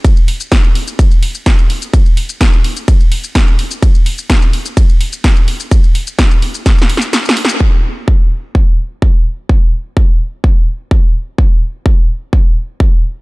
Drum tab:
RD |x-----------x-----------x-----------x-----------|x-----------x-----------x-----------x-----------|x-----------x-----------x-----------x-----------|x-----------x-----------x-----------x-----------|
HH |------o-----------o-----------o-----------o-----|------o-----------o-----------o-----------o-----|------o-----------o-----------o-----------o-----|------o-----------o-----------o-----------o-----|
SH |x--x-----x--x--x-----x--x--x-----x--x--x-----x--|x--x-----x--x--x-----x--x--x-----x--x--x-----x--|x--x-----x--x--x-----x--x--x-----x--x--x-----x--|x--x-----x--x--x-----x--x--x-----x--x--x-----x--|
SD |------------o-----------------------o-----------|------------o-----------------------o-----------|------------o-----------------------o-----------|------------o-----------o---o---o---o---o---o---|
BD |o-----------o-----------o-----------o-----------|o-----------o-----------o-----------o-----------|o-----------o-----------o-----------o-----------|o-----------o-----------o-----------------------|

RD |------------------------------------------------|------------------------------------------------|------------------------------------------------|
HH |------------------------------------------------|------------------------------------------------|------------------------------------------------|
SH |------------------------------------------------|------------------------------------------------|------------------------------------------------|
SD |------------------------------------------------|------------------------------------------------|------------------------------------------------|
BD |o-----------o-----------o-----------o-----------|o-----------o-----------o-----------o-----------|o-----------o-----------o-----------o-----------|